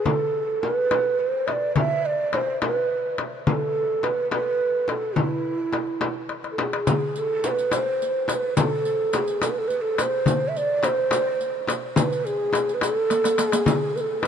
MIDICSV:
0, 0, Header, 1, 5, 480
1, 0, Start_track
1, 0, Tempo, 567108
1, 44, Time_signature, 6, 3, 24, 8
1, 12082, End_track
2, 0, Start_track
2, 0, Title_t, "Ney"
2, 0, Program_c, 0, 77
2, 40, Note_on_c, 0, 69, 92
2, 526, Note_on_c, 0, 70, 83
2, 539, Note_off_c, 0, 69, 0
2, 628, Note_off_c, 0, 70, 0
2, 628, Note_on_c, 0, 71, 83
2, 1012, Note_on_c, 0, 72, 77
2, 1025, Note_off_c, 0, 71, 0
2, 1248, Note_on_c, 0, 76, 82
2, 1260, Note_off_c, 0, 72, 0
2, 1284, Note_on_c, 0, 74, 89
2, 1292, Note_off_c, 0, 76, 0
2, 1487, Note_off_c, 0, 74, 0
2, 1498, Note_on_c, 0, 76, 93
2, 1739, Note_on_c, 0, 74, 95
2, 1752, Note_off_c, 0, 76, 0
2, 1986, Note_on_c, 0, 72, 81
2, 1999, Note_off_c, 0, 74, 0
2, 2217, Note_off_c, 0, 72, 0
2, 2231, Note_on_c, 0, 71, 78
2, 2667, Note_off_c, 0, 71, 0
2, 2940, Note_on_c, 0, 71, 87
2, 2973, Note_on_c, 0, 69, 95
2, 2982, Note_off_c, 0, 71, 0
2, 3418, Note_on_c, 0, 71, 81
2, 3430, Note_off_c, 0, 69, 0
2, 3654, Note_off_c, 0, 71, 0
2, 3658, Note_on_c, 0, 71, 93
2, 4143, Note_on_c, 0, 69, 86
2, 4155, Note_off_c, 0, 71, 0
2, 4378, Note_on_c, 0, 64, 83
2, 4390, Note_off_c, 0, 69, 0
2, 5334, Note_off_c, 0, 64, 0
2, 5516, Note_on_c, 0, 69, 52
2, 5584, Note_on_c, 0, 68, 69
2, 5597, Note_off_c, 0, 69, 0
2, 6078, Note_on_c, 0, 69, 76
2, 6091, Note_off_c, 0, 68, 0
2, 6316, Note_on_c, 0, 72, 72
2, 6329, Note_off_c, 0, 69, 0
2, 6358, Note_on_c, 0, 71, 78
2, 6366, Note_off_c, 0, 72, 0
2, 6543, Note_on_c, 0, 72, 86
2, 6556, Note_off_c, 0, 71, 0
2, 7029, Note_off_c, 0, 72, 0
2, 7029, Note_on_c, 0, 72, 75
2, 7064, Note_on_c, 0, 71, 82
2, 7072, Note_off_c, 0, 72, 0
2, 7260, Note_off_c, 0, 71, 0
2, 7274, Note_on_c, 0, 69, 92
2, 7754, Note_on_c, 0, 68, 75
2, 7766, Note_off_c, 0, 69, 0
2, 7970, Note_on_c, 0, 69, 72
2, 7983, Note_off_c, 0, 68, 0
2, 8045, Note_on_c, 0, 71, 71
2, 8058, Note_off_c, 0, 69, 0
2, 8113, Note_on_c, 0, 69, 66
2, 8126, Note_off_c, 0, 71, 0
2, 8191, Note_on_c, 0, 71, 72
2, 8204, Note_off_c, 0, 69, 0
2, 8266, Note_off_c, 0, 71, 0
2, 8266, Note_on_c, 0, 71, 77
2, 8305, Note_on_c, 0, 69, 83
2, 8314, Note_off_c, 0, 71, 0
2, 8470, Note_on_c, 0, 72, 97
2, 8483, Note_off_c, 0, 69, 0
2, 8873, Note_on_c, 0, 76, 63
2, 8886, Note_off_c, 0, 72, 0
2, 8946, Note_on_c, 0, 74, 105
2, 8959, Note_off_c, 0, 76, 0
2, 9180, Note_on_c, 0, 72, 100
2, 9193, Note_off_c, 0, 74, 0
2, 9904, Note_off_c, 0, 72, 0
2, 10134, Note_on_c, 0, 72, 75
2, 10169, Note_on_c, 0, 71, 82
2, 10177, Note_off_c, 0, 72, 0
2, 10371, Note_on_c, 0, 68, 91
2, 10384, Note_off_c, 0, 71, 0
2, 10784, Note_on_c, 0, 71, 61
2, 10797, Note_off_c, 0, 68, 0
2, 10852, Note_on_c, 0, 68, 89
2, 10865, Note_off_c, 0, 71, 0
2, 10945, Note_off_c, 0, 68, 0
2, 10945, Note_on_c, 0, 69, 89
2, 11329, Note_off_c, 0, 69, 0
2, 11329, Note_on_c, 0, 69, 88
2, 11422, Note_off_c, 0, 69, 0
2, 11422, Note_on_c, 0, 68, 88
2, 11816, Note_on_c, 0, 71, 83
2, 11829, Note_off_c, 0, 68, 0
2, 11855, Note_on_c, 0, 69, 90
2, 11863, Note_off_c, 0, 71, 0
2, 12037, Note_on_c, 0, 71, 77
2, 12050, Note_off_c, 0, 69, 0
2, 12082, Note_off_c, 0, 71, 0
2, 12082, End_track
3, 0, Start_track
3, 0, Title_t, "Darbuka"
3, 47, Note_on_c, 9, 64, 82
3, 131, Note_off_c, 9, 64, 0
3, 770, Note_on_c, 9, 63, 65
3, 855, Note_off_c, 9, 63, 0
3, 1004, Note_on_c, 9, 62, 25
3, 1089, Note_off_c, 9, 62, 0
3, 1249, Note_on_c, 9, 63, 59
3, 1334, Note_off_c, 9, 63, 0
3, 1487, Note_on_c, 9, 64, 92
3, 1571, Note_off_c, 9, 64, 0
3, 1971, Note_on_c, 9, 63, 62
3, 2055, Note_off_c, 9, 63, 0
3, 2093, Note_on_c, 9, 62, 24
3, 2178, Note_off_c, 9, 62, 0
3, 2216, Note_on_c, 9, 63, 68
3, 2300, Note_off_c, 9, 63, 0
3, 2459, Note_on_c, 9, 62, 24
3, 2543, Note_off_c, 9, 62, 0
3, 2694, Note_on_c, 9, 63, 62
3, 2778, Note_off_c, 9, 63, 0
3, 2936, Note_on_c, 9, 64, 103
3, 3021, Note_off_c, 9, 64, 0
3, 3418, Note_on_c, 9, 63, 64
3, 3503, Note_off_c, 9, 63, 0
3, 3538, Note_on_c, 9, 62, 23
3, 3623, Note_off_c, 9, 62, 0
3, 3656, Note_on_c, 9, 63, 68
3, 3741, Note_off_c, 9, 63, 0
3, 3899, Note_on_c, 9, 62, 23
3, 3983, Note_off_c, 9, 62, 0
3, 4139, Note_on_c, 9, 63, 57
3, 4223, Note_off_c, 9, 63, 0
3, 4372, Note_on_c, 9, 64, 93
3, 4457, Note_off_c, 9, 64, 0
3, 4491, Note_on_c, 9, 62, 26
3, 4576, Note_off_c, 9, 62, 0
3, 4614, Note_on_c, 9, 62, 22
3, 4699, Note_off_c, 9, 62, 0
3, 4853, Note_on_c, 9, 63, 62
3, 4938, Note_off_c, 9, 63, 0
3, 4969, Note_on_c, 9, 62, 22
3, 5054, Note_off_c, 9, 62, 0
3, 5089, Note_on_c, 9, 63, 62
3, 5174, Note_off_c, 9, 63, 0
3, 5326, Note_on_c, 9, 63, 49
3, 5411, Note_off_c, 9, 63, 0
3, 5453, Note_on_c, 9, 62, 52
3, 5538, Note_off_c, 9, 62, 0
3, 5576, Note_on_c, 9, 63, 63
3, 5660, Note_off_c, 9, 63, 0
3, 5698, Note_on_c, 9, 62, 80
3, 5783, Note_off_c, 9, 62, 0
3, 5816, Note_on_c, 9, 64, 96
3, 5901, Note_off_c, 9, 64, 0
3, 6416, Note_on_c, 9, 62, 24
3, 6501, Note_off_c, 9, 62, 0
3, 6531, Note_on_c, 9, 63, 70
3, 6616, Note_off_c, 9, 63, 0
3, 6779, Note_on_c, 9, 62, 24
3, 6864, Note_off_c, 9, 62, 0
3, 7014, Note_on_c, 9, 63, 60
3, 7099, Note_off_c, 9, 63, 0
3, 7257, Note_on_c, 9, 64, 88
3, 7342, Note_off_c, 9, 64, 0
3, 7732, Note_on_c, 9, 63, 62
3, 7817, Note_off_c, 9, 63, 0
3, 7851, Note_on_c, 9, 62, 26
3, 7936, Note_off_c, 9, 62, 0
3, 7969, Note_on_c, 9, 63, 65
3, 8054, Note_off_c, 9, 63, 0
3, 8209, Note_on_c, 9, 62, 25
3, 8294, Note_off_c, 9, 62, 0
3, 8450, Note_on_c, 9, 63, 71
3, 8534, Note_off_c, 9, 63, 0
3, 8683, Note_on_c, 9, 64, 96
3, 8768, Note_off_c, 9, 64, 0
3, 9170, Note_on_c, 9, 63, 67
3, 9255, Note_off_c, 9, 63, 0
3, 9293, Note_on_c, 9, 62, 25
3, 9377, Note_off_c, 9, 62, 0
3, 9404, Note_on_c, 9, 63, 78
3, 9488, Note_off_c, 9, 63, 0
3, 9648, Note_on_c, 9, 62, 26
3, 9733, Note_off_c, 9, 62, 0
3, 9890, Note_on_c, 9, 63, 73
3, 9975, Note_off_c, 9, 63, 0
3, 10128, Note_on_c, 9, 64, 95
3, 10213, Note_off_c, 9, 64, 0
3, 10247, Note_on_c, 9, 62, 24
3, 10332, Note_off_c, 9, 62, 0
3, 10369, Note_on_c, 9, 62, 26
3, 10454, Note_off_c, 9, 62, 0
3, 10609, Note_on_c, 9, 63, 74
3, 10693, Note_off_c, 9, 63, 0
3, 10732, Note_on_c, 9, 62, 25
3, 10817, Note_off_c, 9, 62, 0
3, 10845, Note_on_c, 9, 63, 69
3, 10929, Note_off_c, 9, 63, 0
3, 11089, Note_on_c, 9, 63, 55
3, 11174, Note_off_c, 9, 63, 0
3, 11209, Note_on_c, 9, 62, 61
3, 11293, Note_off_c, 9, 62, 0
3, 11326, Note_on_c, 9, 63, 72
3, 11410, Note_off_c, 9, 63, 0
3, 11446, Note_on_c, 9, 62, 76
3, 11531, Note_off_c, 9, 62, 0
3, 11563, Note_on_c, 9, 64, 106
3, 11648, Note_off_c, 9, 64, 0
3, 12043, Note_on_c, 9, 63, 69
3, 12082, Note_off_c, 9, 63, 0
3, 12082, End_track
4, 0, Start_track
4, 0, Title_t, "Frame drum"
4, 50, Note_on_c, 9, 64, 81
4, 134, Note_off_c, 9, 64, 0
4, 533, Note_on_c, 9, 64, 64
4, 618, Note_off_c, 9, 64, 0
4, 771, Note_on_c, 9, 64, 66
4, 855, Note_off_c, 9, 64, 0
4, 1258, Note_on_c, 9, 64, 54
4, 1343, Note_off_c, 9, 64, 0
4, 1491, Note_on_c, 9, 64, 78
4, 1576, Note_off_c, 9, 64, 0
4, 1981, Note_on_c, 9, 64, 62
4, 2066, Note_off_c, 9, 64, 0
4, 2218, Note_on_c, 9, 64, 72
4, 2302, Note_off_c, 9, 64, 0
4, 2694, Note_on_c, 9, 64, 55
4, 2779, Note_off_c, 9, 64, 0
4, 2936, Note_on_c, 9, 64, 91
4, 3021, Note_off_c, 9, 64, 0
4, 3412, Note_on_c, 9, 64, 67
4, 3497, Note_off_c, 9, 64, 0
4, 3651, Note_on_c, 9, 64, 74
4, 3736, Note_off_c, 9, 64, 0
4, 4128, Note_on_c, 9, 64, 62
4, 4213, Note_off_c, 9, 64, 0
4, 4368, Note_on_c, 9, 64, 83
4, 4453, Note_off_c, 9, 64, 0
4, 4846, Note_on_c, 9, 64, 70
4, 4931, Note_off_c, 9, 64, 0
4, 5086, Note_on_c, 9, 64, 74
4, 5170, Note_off_c, 9, 64, 0
4, 5572, Note_on_c, 9, 64, 69
4, 5656, Note_off_c, 9, 64, 0
4, 5814, Note_on_c, 9, 64, 89
4, 5899, Note_off_c, 9, 64, 0
4, 6297, Note_on_c, 9, 64, 73
4, 6381, Note_off_c, 9, 64, 0
4, 6530, Note_on_c, 9, 64, 72
4, 6614, Note_off_c, 9, 64, 0
4, 7007, Note_on_c, 9, 64, 66
4, 7092, Note_off_c, 9, 64, 0
4, 7252, Note_on_c, 9, 64, 91
4, 7337, Note_off_c, 9, 64, 0
4, 7736, Note_on_c, 9, 64, 78
4, 7820, Note_off_c, 9, 64, 0
4, 7969, Note_on_c, 9, 64, 74
4, 8054, Note_off_c, 9, 64, 0
4, 8453, Note_on_c, 9, 64, 61
4, 8537, Note_off_c, 9, 64, 0
4, 8688, Note_on_c, 9, 64, 90
4, 8773, Note_off_c, 9, 64, 0
4, 9164, Note_on_c, 9, 64, 78
4, 9248, Note_off_c, 9, 64, 0
4, 9402, Note_on_c, 9, 64, 75
4, 9486, Note_off_c, 9, 64, 0
4, 9881, Note_on_c, 9, 64, 64
4, 9966, Note_off_c, 9, 64, 0
4, 10123, Note_on_c, 9, 64, 97
4, 10208, Note_off_c, 9, 64, 0
4, 10602, Note_on_c, 9, 64, 67
4, 10687, Note_off_c, 9, 64, 0
4, 10847, Note_on_c, 9, 64, 68
4, 10932, Note_off_c, 9, 64, 0
4, 11565, Note_on_c, 9, 64, 89
4, 11650, Note_off_c, 9, 64, 0
4, 12042, Note_on_c, 9, 64, 67
4, 12082, Note_off_c, 9, 64, 0
4, 12082, End_track
5, 0, Start_track
5, 0, Title_t, "Riq"
5, 5817, Note_on_c, 9, 54, 54
5, 5902, Note_off_c, 9, 54, 0
5, 6058, Note_on_c, 9, 54, 19
5, 6142, Note_off_c, 9, 54, 0
5, 6296, Note_on_c, 9, 54, 48
5, 6380, Note_off_c, 9, 54, 0
5, 6420, Note_on_c, 9, 54, 18
5, 6505, Note_off_c, 9, 54, 0
5, 6539, Note_on_c, 9, 54, 53
5, 6624, Note_off_c, 9, 54, 0
5, 6788, Note_on_c, 9, 54, 21
5, 6873, Note_off_c, 9, 54, 0
5, 7020, Note_on_c, 9, 54, 45
5, 7105, Note_off_c, 9, 54, 0
5, 7254, Note_on_c, 9, 54, 62
5, 7338, Note_off_c, 9, 54, 0
5, 7493, Note_on_c, 9, 54, 19
5, 7578, Note_off_c, 9, 54, 0
5, 7728, Note_on_c, 9, 54, 44
5, 7813, Note_off_c, 9, 54, 0
5, 7851, Note_on_c, 9, 54, 19
5, 7936, Note_off_c, 9, 54, 0
5, 7978, Note_on_c, 9, 54, 52
5, 8063, Note_off_c, 9, 54, 0
5, 8213, Note_on_c, 9, 54, 21
5, 8297, Note_off_c, 9, 54, 0
5, 8454, Note_on_c, 9, 54, 46
5, 8539, Note_off_c, 9, 54, 0
5, 8698, Note_on_c, 9, 54, 63
5, 8783, Note_off_c, 9, 54, 0
5, 8943, Note_on_c, 9, 54, 21
5, 9027, Note_off_c, 9, 54, 0
5, 9176, Note_on_c, 9, 54, 44
5, 9260, Note_off_c, 9, 54, 0
5, 9417, Note_on_c, 9, 54, 50
5, 9502, Note_off_c, 9, 54, 0
5, 9655, Note_on_c, 9, 54, 19
5, 9740, Note_off_c, 9, 54, 0
5, 9900, Note_on_c, 9, 54, 49
5, 9984, Note_off_c, 9, 54, 0
5, 10133, Note_on_c, 9, 54, 59
5, 10218, Note_off_c, 9, 54, 0
5, 10263, Note_on_c, 9, 54, 17
5, 10348, Note_off_c, 9, 54, 0
5, 10382, Note_on_c, 9, 54, 18
5, 10466, Note_off_c, 9, 54, 0
5, 10622, Note_on_c, 9, 54, 45
5, 10707, Note_off_c, 9, 54, 0
5, 10742, Note_on_c, 9, 54, 17
5, 10827, Note_off_c, 9, 54, 0
5, 10860, Note_on_c, 9, 54, 53
5, 10944, Note_off_c, 9, 54, 0
5, 11094, Note_on_c, 9, 54, 57
5, 11178, Note_off_c, 9, 54, 0
5, 11216, Note_on_c, 9, 54, 57
5, 11301, Note_off_c, 9, 54, 0
5, 11331, Note_on_c, 9, 54, 67
5, 11415, Note_off_c, 9, 54, 0
5, 11453, Note_on_c, 9, 54, 84
5, 11538, Note_off_c, 9, 54, 0
5, 11576, Note_on_c, 9, 54, 62
5, 11660, Note_off_c, 9, 54, 0
5, 11828, Note_on_c, 9, 54, 17
5, 11912, Note_off_c, 9, 54, 0
5, 12082, End_track
0, 0, End_of_file